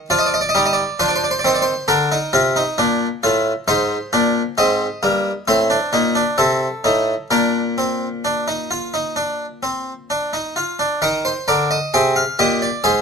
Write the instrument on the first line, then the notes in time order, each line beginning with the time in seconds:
harpsichord
0.10 F3 F4 D5
0.19 D#5
0.26 D5
0.34 D#5
0.41 D5
0.49 D#5
0.55 G3 D#4 D5
0.66 D#5
0.73 D5
0.99 F3 D4 C5
1.08 D5
1.16 C5
1.24 D5
1.31 C5
1.39 D5
1.44 D#3 C4 C5
1.55 D5
1.62 C5
1.88 D3 D4 A#4
2.12 D#4
2.33 C3 F4
2.56 D#4
2.78 A#2 D4
3.23 A2 F4
3.68 G#2 D#4 C5
4.13 A#2 D4
4.58 G#2 C4 D#5
5.03 G2 A#3
5.48 A2 C4 C5
5.70 D4
5.93 A#2 D#4
6.15 D4
6.38 C3 C4 A4
6.84 A2 D#4
7.31 A#2 D4 A#4
7.78 C4
8.25 D4
8.48 D#4
8.71 F4
8.94 D#4
9.16 D4
9.63 C4
10.10 D4
10.33 D#4
10.56 F4
10.79 D4
11.02 D#3 D#4 A#4
11.25 C5
11.48 D3 A#4 D5
11.71 D#5
11.94 C3 G#4 G5
12.16 F5
12.39 A#2 G4 D#5
12.62 D5
12.84 G#2 G#4 C5